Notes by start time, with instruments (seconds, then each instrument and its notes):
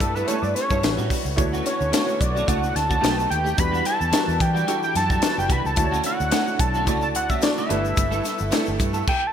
Already playing: string section G3 E4 A4 B4, grand piano A3 D4 E4 G4 B4 D5
0.00 fingered electric bass G2, analog synth lead A4, muted clean electric guitar stroke, kick, closed hi-hat
0.15 clean electric guitar B3 E4 A4, analog synth lead B4, shaker
0.27 grand piano A3 D4 E4 G4 B4, clean electric guitar B3 E4 A4, analog synth lead C#5, closed hi-hat, shaker
0.42 fingered electric bass G2, analog synth lead D5, muted clean electric guitar stroke, shaker
0.55 analog synth lead C#5, muted clean electric guitar stroke, snare, closed hi-hat
0.70 fingered electric bass G2, clean electric guitar B3 E4 A4, kick, shaker
0.82 fingered electric bass A1, grand piano G3 C#4 E4 F#4 B4, string section G3 A3 B3, muted clean electric guitar stroke, snare, closed hi-hat, shaker
0.97 fingered electric bass A2, clean electric guitar G3 C#4 F#4, shaker
1.10 clean electric guitar G3 C#4 F#4, kick, open hi-hat
1.25 fingered electric bass C#2, muted clean electric guitar stroke, shaker
1.36 fingered electric bass D2, string section D3 F#4, grand piano A3 D4 E4 F#4 C#5, muted clean electric guitar stroke, kick, closed hi-hat, shaker
1.53 clean electric guitar A3 C#4 F#4, shaker
1.65 clean electric guitar A3 C#4 F#4, analog synth lead C#5, snare, closed hi-hat, shaker
1.80 fingered electric bass D2, muted clean electric guitar stroke, shaker
1.92 grand piano A3 D4 E4 F#4 C#5, clean electric guitar A3 C#4 F#4, snare, closed hi-hat, shaker
2.07 muted clean electric guitar stroke, shaker
2.20 fingered electric bass B1, analog synth lead D5, muted clean electric guitar stroke, kick, closed hi-hat
2.35 clean electric guitar A3 C#4 F#4, shaker
2.47 fingered electric bass C#2, clean electric guitar A3 C#4 F#4, grand piano A3 D4 E4 F#4 D5, analog synth lead F#5, kick, closed hi-hat, shaker
2.63 muted clean electric guitar stroke, shaker
2.74 fingered electric bass D2, analog synth lead A5, muted clean electric guitar stroke, snare, closed hi-hat
2.89 clean electric guitar A3 C#4 F#4, kick, shaker
3.01 fingered electric bass B1, clean electric guitar A3 D#4 G4, grand piano A3 D#4 F#4 G4 B4, string section A3 B3 D#4, snare, closed hi-hat, shaker
3.16 muted clean electric guitar stroke, shaker
3.29 fingered electric bass D#2, analog synth lead G5, muted clean electric guitar stroke, closed hi-hat
3.44 clean electric guitar A3 D#4 G4, shaker
3.57 fingered electric bass E2, string section E3 G3 D4 E4, grand piano G3 D4 E4 F#4 B4, analog synth lead B5, muted clean electric guitar stroke, kick, closed hi-hat, shaker
3.71 clean electric guitar G3 D4 F#4, shaker
3.84 clean electric guitar G3 D4 F#4, analog synth lead A5, snare, closed hi-hat, shaker
3.99 fingered electric bass E2, muted clean electric guitar stroke, shaker
4.12 clean electric guitar G3 D4 F#4, grand piano G3 D4 E4 F#4 A#4, snare, closed hi-hat, shaker
4.20 grand piano B4
4.26 fingered electric bass E2, muted clean electric guitar stroke, shaker
4.40 fingered electric bass E3, analog synth lead G5, muted clean electric guitar stroke, kick, closed hi-hat
4.54 clean electric guitar G3 D4 F#4, shaker
4.66 grand piano G3 D4 E4 F#4 A4, clean electric guitar G3 D4 F#4, closed hi-hat, shaker
4.81 analog synth lead G5, muted clean electric guitar stroke, shaker
4.93 fingered electric bass F#2, analog synth lead A5, muted clean electric guitar stroke, snare, closed hi-hat
5.09 clean electric guitar G3 D4 F#4, analog synth lead A5, kick, shaker
5.22 grand piano G3 D4 E4 F#4 B4, analog synth lead A5, muted clean electric guitar stroke, snare, closed hi-hat, shaker
5.37 fingered electric bass F#1, analog synth lead G5, muted clean electric guitar stroke, shaker
5.48 fingered electric bass C2, clean electric guitar G3 D4 F#4, analog synth lead B5, kick, closed hi-hat
5.64 fingered electric bass C#2, analog synth lead A5, muted clean electric guitar stroke, shaker
5.76 fingered electric bass D2, string section D3 A3 D4, grand piano A3 D4 E4 F#4 C5, muted clean electric guitar stroke, kick, closed hi-hat, shaker
5.84 grand piano C#5
5.91 clean electric guitar A3 C#4 F#4, shaker
6.04 clean electric guitar A3 C#4 F#4, analog synth lead F#5, snare, closed hi-hat, shaker
6.19 fingered electric bass D2, muted clean electric guitar stroke, shaker
6.31 grand piano A3 D4 E4 F#4 C#5, clean electric guitar A3 C#4 F#4, snare, closed hi-hat, shaker
6.47 muted clean electric guitar stroke, shaker
6.59 fingered electric bass B1, analog synth lead A5, muted clean electric guitar stroke, kick, closed hi-hat
6.74 clean electric guitar A3 C#4 F#4, shaker
6.85 fingered electric bass C#2, grand piano A3 D4 E4 F#4 D5, clean electric guitar A3 C#4 F#4, kick, closed hi-hat, shaker
7.02 analog synth lead A5, muted clean electric guitar stroke, shaker
7.15 fingered electric bass D2, analog synth lead F#5, muted clean electric guitar stroke, closed hi-hat
7.29 clean electric guitar A3 C#4 F#4, analog synth lead E5, kick, shaker
7.41 grand piano A3 D4 E4 F#4 D5, analog synth lead D5, muted clean electric guitar stroke, snare, closed hi-hat, shaker
7.58 clean electric guitar A3 C#4 F#4, analog synth lead E5, shaker
7.69 fingered electric bass G1, string section G3 E4 A4 B4, grand piano A3 D4 E4 G4 B4, clean electric guitar B3 E4 A4, closed hi-hat
7.85 muted clean electric guitar stroke, shaker
7.97 fingered electric bass G1, muted clean electric guitar stroke, kick, closed hi-hat, shaker
8.11 clean electric guitar B3 E4 A4, shaker
8.24 clean electric guitar B3 E4 A4, snare, closed hi-hat, shaker
8.38 fingered electric bass G1, muted clean electric guitar stroke, shaker
8.51 grand piano A3 D4 E4 G4 A4, clean electric guitar B3 E4 A4, snare, closed hi-hat, shaker
8.66 fingered electric bass G1, muted clean electric guitar stroke, shaker
8.78 fingered electric bass G2, muted clean electric guitar stroke, kick, closed hi-hat, shaker
8.93 clean electric guitar B3 E4 A4, shaker
9.07 analog synth lead G5, kick, crash
9.27 analog synth lead A5